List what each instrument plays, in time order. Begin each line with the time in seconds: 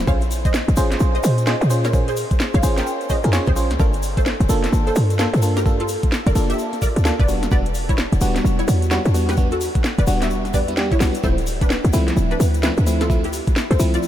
0.07 808-style bass A#1, fm electric piano C#4 F4 G#4 C5, synth pluck C#5 F5, kick, shaker
0.21 closed hi-hat, shaker
0.31 open hi-hat, shaker
0.45 synth pluck C5 D#5, kick, closed hi-hat, shaker
0.54 snare, shaker
0.68 808-style bass G#1, closed hi-hat, shaker
0.76 808-style bass G#1, fm electric piano C#4 F4 G#4 C5, open hi-hat, shaker
0.91 snare, closed hi-hat, shaker
1.00 808-style bass A#1, shaker
1.15 synth pluck C5 D#5, closed hi-hat, shaker
1.23 808-style bass A#2, open hi-hat, shaker
1.38 closed hi-hat, shaker
1.46 fm electric piano C#4 F4 G#4 C5, synth pluck C5 D#5, snare, shaker
1.61 808-style bass A#2, closed hi-hat, shaker
1.70 fm electric piano C#4 F4 G#4 C5, open hi-hat, shaker
1.84 synth pluck A#4 C#5, snare, closed hi-hat, shaker
1.93 fm electric piano C#4 F4 G#4 C5, kick, shaker
2.08 synth pluck G#4 C5, closed hi-hat, shaker
2.16 open hi-hat, shaker
2.31 kick, closed hi-hat, shaker
2.40 snare, shaker
2.54 808-style bass G#1, synth pluck C#5 F5, closed hi-hat, shaker
2.63 808-style bass G#1, fm electric piano C#4 F4 G#4 C5, open hi-hat, shaker
2.77 synth pluck A#4 G5, snare, closed hi-hat, shaker
2.87 shaker
3.01 closed hi-hat, shaker
3.09 fm electric piano C#4 F4 G#4 C#5, synth pluck C5 D#5, kick, open hi-hat, shaker
3.23 808-style bass F2, fm electric piano C#4 F4 G#4 A#4, closed hi-hat, shaker
3.33 fm electric piano C#4 F4 G#4 C#5, snare, shaker
3.46 808-style bass A#1, synth pluck G#4 C5, kick, closed hi-hat, shaker
3.56 fm electric piano C#4 F4 G#4 C5, open hi-hat, shaker
3.70 808-style bass C#2, snare, closed hi-hat, shaker
3.79 808-style bass G1, fm electric piano A#3 D4 F4 A4, synth pluck A#4 D5, kick, shaker
3.93 closed hi-hat, shaker
4.03 open hi-hat, shaker
4.17 synth pluck A4 C5, kick, closed hi-hat, shaker
4.26 snare, shaker
4.40 808-style bass F1, closed hi-hat, shaker
4.49 808-style bass F1, fm electric piano A#3 D4 F4 A4, open hi-hat, shaker
4.64 snare, closed hi-hat, shaker
4.73 808-style bass G1, shaker
4.87 synth pluck A4 C5, closed hi-hat, shaker
4.95 808-style bass G2, open hi-hat, shaker
5.10 closed hi-hat, shaker
5.19 fm electric piano A#3 D4 F4 A4, synth pluck A4 C5, snare, shaker
5.33 808-style bass G2, closed hi-hat, shaker
5.42 fm electric piano A#3 D4 F4 A4, open hi-hat, shaker
5.57 synth pluck G4 A#4, snare, closed hi-hat, shaker
5.66 fm electric piano A#3 D4 F4 A4, kick, shaker
5.80 synth pluck F4 A4, closed hi-hat, shaker
5.88 open hi-hat, shaker
6.03 kick, closed hi-hat, shaker
6.12 snare, shaker
6.26 808-style bass F1, synth pluck A#4 D5, closed hi-hat, shaker
6.35 808-style bass F1, fm electric piano A#3 D4 F4 A4, open hi-hat, shaker
6.50 synth pluck G4 E5, closed hi-hat, shaker
6.59 shaker
6.73 snare, closed hi-hat, shaker
6.82 synth pluck A#4 D5, kick, open hi-hat, shaker
6.96 808-style bass D2, closed hi-hat, shaker
7.05 fm electric piano A#3 D4 F4 A4, snare, shaker
7.19 808-style bass E1, synth pluck B4 D5, kick, closed hi-hat, shaker
7.28 fm electric piano G3 B3 D4 F#4, open hi-hat, shaker
7.43 snare, closed hi-hat, shaker
7.51 808-style bass E1, fm electric piano G3 B3 D4 F#4, synth pluck B4 D5, kick, shaker
7.65 closed hi-hat, shaker
7.74 open hi-hat, shaker
7.89 synth pluck E4 C#5, kick, closed hi-hat, shaker
7.98 snare, shaker
8.12 808-style bass D1, closed hi-hat, shaker
8.21 808-style bass D1, fm electric piano G3 B3 D4 F#4, open hi-hat, shaker
8.36 snare, closed hi-hat, shaker
8.44 808-style bass E1, shaker
8.59 synth pluck E4 C#5, closed hi-hat, shaker
8.68 808-style bass E2, open hi-hat, shaker
8.82 closed hi-hat, shaker
8.91 fm electric piano G3 B3 D4 F#4, synth pluck E4 C#5, snare, shaker
9.05 808-style bass E2, closed hi-hat, shaker
9.14 fm electric piano G3 B3 D4 F#4, open hi-hat, shaker
9.29 synth pluck G4 B4, snare, closed hi-hat, shaker
9.37 fm electric piano G3 B3 D4 F#4, kick, shaker
9.51 synth pluck F#4 A4, closed hi-hat, shaker
9.61 open hi-hat, shaker
9.75 kick, closed hi-hat, shaker
9.84 snare, shaker
9.98 808-style bass D1, synth pluck B4 D5, closed hi-hat, shaker
10.07 808-style bass D1, fm electric piano G3 B3 D4 F#4, open hi-hat, shaker
10.22 synth pluck G4 E5, snare, closed hi-hat, shaker
10.30 808-style bass E1, shaker
10.45 snare, closed hi-hat, shaker
10.54 808-style bass E2, fm electric piano G3 B3 D4 G4, synth pluck B4 D5, kick, open hi-hat, shaker
10.68 fm electric piano G3 B3 D4 E4, closed hi-hat, shaker
10.77 fm electric piano G3 B3 D4 G4, snare, shaker
10.91 synth pluck E4 C#5, kick, closed hi-hat, shaker
11.00 808-style bass B1, fm electric piano G3 B3 D4 F#4, snare, open hi-hat, shaker
11.14 closed hi-hat, shaker
11.23 808-style bass D1, fm electric piano F3 A3 C4 E4, synth pluck A4 C5, kick, shaker
11.38 closed hi-hat, shaker
11.47 open hi-hat, shaker
11.61 synth pluck D4 B4, kick, closed hi-hat, shaker
11.70 snare, shaker
11.84 808-style bass C2, closed hi-hat, shaker
11.93 808-style bass C2, fm electric piano F3 A3 C4 E4, open hi-hat, shaker
12.08 snare, closed hi-hat, shaker
12.17 808-style bass D1, shaker
12.31 synth pluck D4 B4, closed hi-hat, shaker
12.40 808-style bass D2, open hi-hat, shaker
12.54 closed hi-hat, shaker
12.63 fm electric piano F3 A3 C4 E4, synth pluck D4 B4, snare, shaker
12.77 808-style bass D2, closed hi-hat, shaker
12.87 fm electric piano F3 A3 C4 E4, open hi-hat, shaker
13.01 synth pluck F4 A4, snare, closed hi-hat, shaker
13.10 fm electric piano F3 A3 C4 E4, kick, shaker
13.24 synth pluck E4 G4, closed hi-hat, shaker
13.33 open hi-hat, shaker
13.47 kick, closed hi-hat, shaker
13.56 snare, shaker
13.71 808-style bass C2, synth pluck A4 C5, closed hi-hat, shaker
13.79 808-style bass C2, fm electric piano F3 A3 C4 E4, open hi-hat, shaker
13.94 synth pluck F4 D5, closed hi-hat, shaker
14.03 shaker